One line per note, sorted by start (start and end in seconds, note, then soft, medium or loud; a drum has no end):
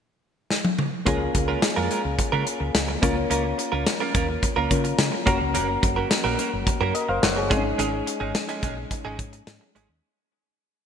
0.50 snare medium
0.65 high tom medium
0.79 mid tom medium
1.05 1.28 C#2 medium
1.05 1.20 G#3 medium
1.05 2.98 A#3 medium
1.05 2.99 C#4 medium
1.05 1.20 C#4 medium
1.05 2.99 F4 medium
1.05 1.20 F4 medium
1.05 2.99 G#4 medium
1.05 1.19 A#4 medium
1.05 kick loud
1.05 closed hi-hat medium
1.20 muted clean electric guitar stroke soft
1.35 1.56 C#2 medium
1.35 muted clean electric guitar stroke soft
1.35 kick medium
1.35 closed hi-hat medium
1.48 1.59 G#3 soft
1.48 1.59 C#4 soft
1.48 1.59 F4 medium
1.48 1.59 A#4 medium
1.62 muted clean electric guitar stroke soft
1.62 snare loud
1.62 closed hi-hat medium
1.76 1.87 F2 medium
1.76 1.89 G#3 medium
1.76 1.90 C#4 medium
1.76 1.90 F4 medium
1.76 1.90 A#4 medium
1.90 2.01 G#3 medium
1.90 2.01 C#4 medium
1.90 2.01 F4 medium
1.90 2.01 A#4 medium
1.90 closed hi-hat medium
2.04 2.15 C#2 medium
2.04 muted clean electric guitar stroke soft
2.19 muted clean electric guitar stroke soft
2.19 kick medium
2.19 closed hi-hat medium
2.32 2.43 C#3 medium
2.32 2.45 G#3 medium
2.32 2.46 C#4 medium
2.32 2.46 F4 medium
2.32 2.46 A#4 medium
2.46 muted clean electric guitar stroke soft
2.46 closed hi-hat medium
2.60 2.71 C#2 medium
2.60 muted clean electric guitar stroke soft
2.74 2.95 C#2 medium
2.74 snare loud
2.74 closed hi-hat medium
2.88 muted clean electric guitar stroke soft
3.02 3.24 C#2 medium
3.02 4.67 A#3 medium
3.02 3.16 A#3 medium
3.02 4.67 C#4 medium
3.02 3.16 C#4 medium
3.02 4.68 F4 medium
3.02 3.16 F4 medium
3.02 3.16 A#4 medium
3.02 4.68 A#4 medium
3.02 kick medium
3.02 closed hi-hat medium
3.17 muted clean electric guitar stroke soft
3.30 3.52 C#2 medium
3.30 3.44 A#3 medium
3.30 3.44 C#4 medium
3.30 3.43 F4 medium
3.30 3.43 A#4 medium
3.30 closed hi-hat medium
3.44 muted clean electric guitar stroke soft
3.58 muted clean electric guitar stroke soft
3.58 closed hi-hat medium
3.72 3.83 C#2 medium
3.72 3.83 A#3 soft
3.72 3.83 C#4 soft
3.72 3.83 F4 medium
3.72 3.83 A#4 medium
3.87 muted clean electric guitar stroke soft
3.87 snare medium
3.87 closed hi-hat medium
4.00 4.13 A#3 medium
4.00 4.14 C#4 medium
4.00 4.14 F4 medium
4.00 4.14 A#4 medium
4.14 4.36 D#2 medium
4.14 4.25 A#3 medium
4.14 4.25 C#4 medium
4.14 4.25 F4 medium
4.14 4.26 A#4 medium
4.14 kick medium
4.14 closed hi-hat medium
4.29 muted clean electric guitar stroke soft
4.43 muted clean electric guitar stroke soft
4.43 kick medium
4.43 closed hi-hat medium
4.56 4.67 C#2 medium
4.56 4.69 A#3 medium
4.56 4.70 C#4 medium
4.56 4.70 F4 medium
4.56 4.70 A#4 medium
4.70 4.92 C#3 medium
4.70 5.24 A#3 medium
4.70 5.25 C#4 soft
4.70 5.27 F4 soft
4.70 5.27 A#4 medium
4.70 muted clean electric guitar stroke soft
4.70 kick medium
4.70 closed hi-hat medium
4.84 muted clean electric guitar stroke medium
4.84 closed hi-hat medium
4.99 5.09 C#3 loud
4.99 snare loud
4.99 closed hi-hat medium
5.12 muted clean electric guitar stroke soft
5.25 5.37 F#1 medium
5.25 7.18 A#3 medium
5.25 5.40 A#3 medium
5.25 7.19 C#4 medium
5.25 5.40 C#4 medium
5.25 5.39 F#4 medium
5.25 7.19 F#4 medium
5.25 5.39 A#4 medium
5.25 6.92 A#4 medium
5.25 kick loud
5.25 closed hi-hat medium
5.40 5.56 C#2 medium
5.40 muted clean electric guitar stroke soft
5.54 5.76 F#1 medium
5.54 5.68 A#3 medium
5.54 5.68 C#4 medium
5.54 5.68 F#4 medium
5.54 5.67 A#4 medium
5.54 closed hi-hat medium
5.68 muted clean electric guitar stroke soft
5.83 6.04 F#1 medium
5.83 muted clean electric guitar stroke soft
5.83 kick medium
5.83 closed hi-hat medium
5.96 6.08 A#3 soft
5.96 6.08 C#4 medium
5.96 6.07 F#4 medium
5.96 6.07 A#4 medium
6.10 muted clean electric guitar stroke soft
6.10 snare medium
6.10 closed hi-hat medium
6.24 6.35 A#1 medium
6.24 6.37 A#3 medium
6.24 6.38 C#4 medium
6.24 6.38 F#4 medium
6.24 6.38 A#4 medium
6.38 6.49 A#3 medium
6.38 6.49 C#4 medium
6.38 6.50 F#4 medium
6.38 6.50 A#4 medium
6.38 closed hi-hat medium
6.52 6.64 F#1 medium
6.52 muted clean electric guitar stroke soft
6.67 muted clean electric guitar stroke soft
6.67 muted fretless electric bass stroke soft
6.67 kick medium
6.67 closed hi-hat medium
6.81 6.91 F#2 medium
6.81 6.94 A#3 medium
6.81 6.94 C#4 medium
6.81 6.94 F#4 medium
6.81 6.94 A#4 medium
6.95 7.09 A#4 soft
6.95 7.08 D#5 medium
6.95 muted clean electric guitar stroke soft
6.95 closed hi-hat medium
7.09 7.19 F#1 medium
7.09 7.23 C5 medium
7.09 7.22 F5 medium
7.09 muted clean electric guitar stroke soft
7.23 7.51 F#1 medium
7.23 7.36 C#5 medium
7.23 7.36 F#5 medium
7.23 snare loud
7.23 closed hi-hat medium
7.36 7.51 G#4 soft
7.36 7.64 C#5 medium
7.36 muted clean electric guitar stroke soft
7.50 7.72 G#1 medium
7.50 9.71 G#3 medium
7.50 7.64 G#3 medium
7.50 7.57 C4 soft
7.50 7.64 C#4 medium
7.50 7.63 D#4 medium
7.50 9.72 D#4 medium
7.50 7.63 G#4 medium
7.50 9.72 G#4 medium
7.50 kick loud
7.50 closed hi-hat medium
7.57 9.75 C#4 medium
7.64 muted clean electric guitar stroke soft
7.78 8.00 G#1 medium
7.78 7.92 G#3 medium
7.78 7.92 C#4 medium
7.78 7.92 D#4 medium
7.78 7.91 G#4 medium
7.78 closed hi-hat medium
7.92 muted clean electric guitar stroke soft
8.06 muted clean electric guitar stroke soft
8.06 closed hi-hat medium
8.20 8.31 G#1 medium
8.20 8.32 G#3 soft
8.20 8.32 C#4 soft
8.20 8.31 D#4 soft
8.20 8.31 G#4 medium
8.35 muted clean electric guitar stroke soft
8.35 snare medium
8.35 closed hi-hat medium
8.49 8.61 G#3 medium
8.49 8.62 C#4 medium
8.49 8.62 D#4 medium
8.49 8.62 G#4 medium
8.49 closed hi-hat soft
8.62 8.84 A#1 medium
8.62 8.73 G#3 medium
8.62 8.74 C#4 medium
8.62 8.74 D#4 medium
8.62 8.74 G#4 medium
8.62 kick medium
8.62 closed hi-hat medium
8.77 muted clean electric guitar stroke soft
8.91 muted clean electric guitar stroke soft
8.91 kick medium
8.91 closed hi-hat medium
9.05 9.20 G#1 medium
9.05 9.18 G#3 medium
9.05 9.18 C#4 medium
9.05 9.18 D#4 medium
9.05 9.18 G#4 medium
9.19 9.40 G#2 medium
9.19 muted clean electric guitar stroke soft
9.19 kick medium
9.19 closed hi-hat medium
9.33 muted clean electric guitar stroke soft
9.33 closed hi-hat soft
9.47 9.58 G#2 medium
9.47 snare loud
9.47 closed hi-hat medium
9.61 muted clean electric guitar stroke soft
9.75 9.86 G#1 medium
9.75 9.89 G#3 medium
9.75 9.89 C#4 medium
9.75 9.89 D#4 medium
9.75 9.88 G#4 medium
9.75 closed hi-hat medium
9.89 10.00 D#2 medium
9.89 muted clean electric guitar stroke soft